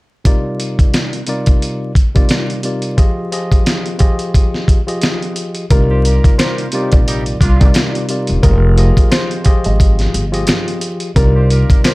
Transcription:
0.24 tine electric piano C3 G3 D#4 F4 A#4 D5, kick, closed hi-hat
0.60 closed hi-hat
0.79 kick, closed hi-hat
0.94 snare, closed hi-hat
1.13 closed hi-hat
1.27 tine electric piano C3 G3 D#4 F4 A#4 D5, closed hi-hat
1.46 kick, closed hi-hat
1.62 closed hi-hat
1.95 kick, closed hi-hat
2.14 tine electric piano C3 G3 D#4 F4 A#4 D5, kick, closed hi-hat
2.29 snare, closed hi-hat
2.50 closed hi-hat
2.63 tine electric piano C3 G3 D#4 F4 A#4 D5, closed hi-hat
2.82 closed hi-hat
2.97 tine electric piano F3 F4 G4 G#4 D#5, kick, closed hi-hat
3.31 tine electric piano F3 F4 G4 G#4 D#5, closed hi-hat
3.52 kick, closed hi-hat
3.66 snare, closed hi-hat
3.86 closed hi-hat
3.98 tine electric piano F3 F4 G4 G#4 D#5, kick, closed hi-hat
4.19 closed hi-hat
4.34 kick, closed hi-hat
4.54 snare
4.68 kick, closed hi-hat
4.86 tine electric piano F3 F4 G4 G#4 D#5, closed hi-hat
5.02 snare, closed hi-hat
5.22 closed hi-hat
5.36 closed hi-hat
5.55 closed hi-hat
5.70 upright bass C2, tine electric piano C3 G3 D#4 F4 A#4 D5, upright piano A#4, kick, closed hi-hat
5.90 horn section F4 G4 C5
6.05 horn section F4 G4 A#4, closed hi-hat
6.24 kick, closed hi-hat
6.38 horn section F4 G4 A#4, upright piano C5, finger snap, snare, closed hi-hat
6.58 closed hi-hat
6.72 tine electric piano C3 G3 D#4 F4 A#4 D5, horn section G3 D#4 G4, closed hi-hat
6.92 upright bass A#1, upright piano D5, kick, closed hi-hat
7.07 horn section G3 D#4 G4, closed hi-hat
7.26 closed hi-hat
7.40 upright bass C2, horn section A#3 D4 F4, kick, closed hi-hat
7.59 tine electric piano C3 G3 D#4 F4 A#4 D5, kick, closed hi-hat
7.74 finger snap, snare, closed hi-hat
7.95 closed hi-hat
8.08 tine electric piano C3 G3 D#4 F4 A#4 D5, closed hi-hat
8.27 upright bass E1, closed hi-hat
8.42 upright bass F1, tine electric piano F3 F4 G4 G#4 D#5, upright piano A#4, kick, closed hi-hat
8.77 tine electric piano F3 F4 G4 G#4 D#5, closed hi-hat
8.97 kick, closed hi-hat
9.11 upright piano C5, finger snap, snare, closed hi-hat
9.31 closed hi-hat
9.44 tine electric piano F3 F4 G4 G#4 D#5, kick, closed hi-hat
9.64 upright bass G#1, upright piano D#5, closed hi-hat
9.80 kick, closed hi-hat
9.99 snare, closed hi-hat
10.14 upright bass G1, closed hi-hat
10.32 tine electric piano F3 F4 G4 G#4 D#5, closed hi-hat
10.47 finger snap, snare, closed hi-hat
10.68 closed hi-hat
10.81 closed hi-hat
11.00 closed hi-hat
11.15 upright bass C2, tine electric piano C3 G3 D#4 F4 A#4 D5, upright piano A#4, kick, closed hi-hat
11.35 horn section F4 G4 C5
11.50 horn section F4 G4 A#4, closed hi-hat
11.70 kick, closed hi-hat
11.84 horn section F4 G4 A#4, upright piano C5, finger snap, snare, closed hi-hat

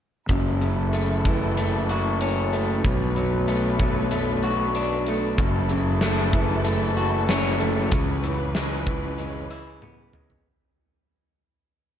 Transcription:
0.29 fingered electric bass F#1, clean electric guitar F#2, string section F#3 E4 A4, kick, closed hi-hat
0.61 clean electric guitar C#3, closed hi-hat
0.93 clean electric guitar A3, closed hi-hat
1.25 clean electric guitar E3, kick, closed hi-hat
1.57 clean electric guitar A3, closed hi-hat
1.89 clean electric guitar F#4, closed hi-hat
2.21 clean electric guitar C#4, closed hi-hat
2.53 clean electric guitar A3, closed hi-hat
2.84 fingered electric bass B1, clean electric guitar B2, string section A3 D4 B4, kick, closed hi-hat
3.16 clean electric guitar F#3, closed hi-hat
3.48 clean electric guitar A3, closed hi-hat
3.79 clean electric guitar F#3, kick, closed hi-hat
4.11 clean electric guitar A3, closed hi-hat
4.43 clean electric guitar F#4, closed hi-hat
4.75 clean electric guitar D4, closed hi-hat
5.06 clean electric guitar A3, closed hi-hat
5.38 fingered electric bass F#1, clean electric guitar F#2, string section F#3 E4 A4, kick, closed hi-hat
5.69 clean electric guitar C#3, closed hi-hat
6.01 clean electric guitar A3, snare, closed hi-hat
6.33 clean electric guitar E3, kick, closed hi-hat
6.65 clean electric guitar A3, closed hi-hat
6.97 clean electric guitar F#4, closed hi-hat
7.29 clean electric guitar C#4, snare, closed hi-hat
7.60 clean electric guitar A3, closed hi-hat
7.91 fingered electric bass C#2, clean electric guitar C#3, string section E3 C#4 B4, kick, closed hi-hat
8.24 clean electric guitar E3, closed hi-hat
8.55 clean electric guitar G#3, snare, closed hi-hat
8.86 clean electric guitar E3, kick, closed hi-hat
9.18 clean electric guitar G#3, closed hi-hat
9.50 clean electric guitar E4, closed hi-hat
9.82 clean electric guitar B3, high tom
10.13 clean electric guitar G#3, mid tom
10.30 floor tom

